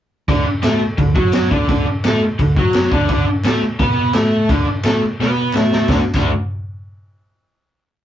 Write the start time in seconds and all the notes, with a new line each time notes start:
0.28 D2 D3 D4, kick, crash
0.47 muted overdriven electric guitar stroke, muted picked electric bass stroke
0.63 A2 A3 A4, snare, clap, crash
0.81 muted overdriven electric guitar stroke, muted picked electric bass stroke
0.98 D2 D3, kick, crash
1.15 F#2 F#3 F#4, kick
1.32 snare, clap, crash
1.51 D2 D3 D4, kick
1.68 D2 D3 D4, kick, crash
1.87 muted overdriven electric guitar stroke, muted picked electric bass stroke
2.03 A2 A3 A4, snare, clap, crash
2.21 muted picked electric bass stroke, muted overdriven electric guitar stroke
2.39 D2 D3, kick, crash
2.56 F#2 F#3 F#4, kick
2.73 snare, clap, crash
2.92 D2 D3 D4, kick
3.09 D2 D3 D4, kick, crash
3.27 muted picked electric bass stroke, muted overdriven electric guitar stroke
3.44 A2 A3 A4, snare, clap, crash
3.62 muted overdriven electric guitar stroke, muted picked electric bass stroke
3.79 B2 B3 B4, kick, crash
4.13 A2 A3 A4, snare, clap, crash
4.49 D2 D3 D4, kick, crash
4.67 muted picked electric bass stroke, muted overdriven electric guitar stroke
4.84 A2 A3 A4, snare, clap, crash
5.02 muted overdriven electric guitar stroke, muted picked electric bass stroke
5.19 B2 B3 B4, snare
5.53 A2 A3 A4, snare, clap
5.72 snare
5.89 D2 D3 A3 D4 F#4, kick, snare, clap
6.14 D2 D3 A3 D4 F#4, kick, clap, crash